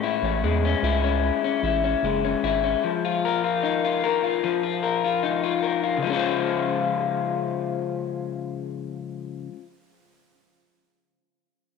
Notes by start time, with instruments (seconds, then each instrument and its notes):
Already playing: clean electric guitar A2 G#3 C#4
0.03 clean electric guitar E4
0.22 analog synth bass A1, clean electric guitar C#4
0.43 analog synth bass E2, clean electric guitar G#3
0.65 clean electric guitar C#4
0.83 analog synth bass C#2, clean electric guitar E4
1.04 clean electric guitar C#4
1.44 clean electric guitar C#4
1.63 analog synth bass A1, clean electric guitar E4
1.84 clean electric guitar C#4
2.03 analog synth bass F#1, clean electric guitar G#3
2.25 clean electric guitar C#4
2.43 analog synth bass G#1, clean electric guitar E4
2.64 clean electric guitar C#4
2.84 clean electric guitar F3
3.05 clean electric guitar F4
3.25 clean electric guitar A#4
3.44 clean electric guitar F4
3.63 clean electric guitar D#4
3.85 clean electric guitar F4
4.04 clean electric guitar A#4
4.23 clean electric guitar F4
4.44 clean electric guitar F3
4.63 clean electric guitar F4
4.83 clean electric guitar A#4
5.04 clean electric guitar F4
5.23 clean electric guitar D#4
5.43 clean electric guitar F4
5.62 clean electric guitar A#4
5.83 clean electric guitar F4
5.97 clean electric guitar C#3
6.02 clean electric guitar F3 G#3
6.10 clean electric guitar C#4 F4
6.17 clean electric guitar C5